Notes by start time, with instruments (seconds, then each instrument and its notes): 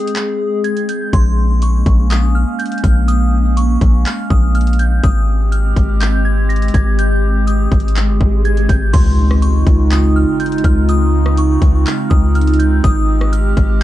Already playing: ambient pad G#3 C4 G#4, synth bell D#6
0.07 closed hi-hat
0.16 clap, closed hi-hat
0.64 synth bell G#6, closed hi-hat
0.77 closed hi-hat
0.89 synth bell G6, closed hi-hat
1.13 808-style bass A#1, ambient pad A#3 C#4, synth bell C6, kick, closed hi-hat
1.62 synth bell C#6, closed hi-hat
1.86 808-style bass A#1, kick, closed hi-hat
2.10 synth bell D#6, clap, closed hi-hat
2.35 synth bell F6
2.59 synth bell G6, closed hi-hat
2.66 closed hi-hat
2.72 closed hi-hat
2.78 closed hi-hat
2.84 808-style bass A#1, synth bell F6, kick, closed hi-hat
3.08 synth bell D#6, closed hi-hat
3.57 synth bell C#6, closed hi-hat
3.81 808-style bass A#1, kick, closed hi-hat
4.06 synth bell F6, clap, closed hi-hat
4.30 808-style bass A#1, synth bell D#6, kick
4.55 synth bell F6, closed hi-hat
4.61 closed hi-hat
4.67 closed hi-hat
4.73 closed hi-hat
4.79 synth bell G6, closed hi-hat
5.03 808-style bass G#1, ambient pad G#3 C4 G4, synth bell D#6, kick, closed hi-hat, swell
5.52 synth bell F6, closed hi-hat
5.76 808-style bass G#1, kick, closed hi-hat
6.01 synth bell G6, clap, closed hi-hat
6.25 synth bell G#6
6.49 synth bell A#6, closed hi-hat
6.56 closed hi-hat
6.62 closed hi-hat
6.68 closed hi-hat
6.74 808-style bass G#1, synth bell G#6, kick, closed hi-hat
6.99 synth bell G6, closed hi-hat
7.47 synth bell D#6, closed hi-hat
7.72 808-style bass G#1, kick, closed hi-hat
7.80 closed hi-hat
7.88 closed hi-hat
7.96 clap, closed hi-hat
8.09 808-style bass G1
8.21 808-style bass G#1, kick
8.45 synth bell G#6, closed hi-hat
8.57 closed hi-hat
8.69 808-style bass G#1, synth bell G6, kick, closed hi-hat
8.93 808-style bass C#2, ambient pad C#3 G#3 C4 D#4 F4, synth bell C6, kick, closed hi-hat, crash, impact
9.31 cross-stick
9.42 synth bell C#6, closed hi-hat
9.67 808-style bass C#2, kick, closed hi-hat
9.91 synth bell D#6, clap, closed hi-hat
10.16 synth bell F6
10.40 synth bell G6, closed hi-hat
10.46 closed hi-hat
10.52 closed hi-hat
10.58 closed hi-hat
10.64 808-style bass C#2, synth bell F6, kick, closed hi-hat
10.89 synth bell D#6, closed hi-hat
11.26 cross-stick
11.37 synth bell C#6, closed hi-hat
11.62 808-style bass C#2, kick, closed hi-hat
11.86 synth bell F6, clap, closed hi-hat
12.10 808-style bass C#2, synth bell D#6, kick
12.35 synth bell F6, closed hi-hat
12.41 closed hi-hat
12.47 closed hi-hat
12.54 closed hi-hat
12.59 synth bell G6, closed hi-hat
12.84 808-style bass G#1, ambient pad G#3 G4, synth bell D#6, kick, closed hi-hat
13.21 cross-stick
13.33 synth bell F6, closed hi-hat
13.57 808-style bass G#1, kick, closed hi-hat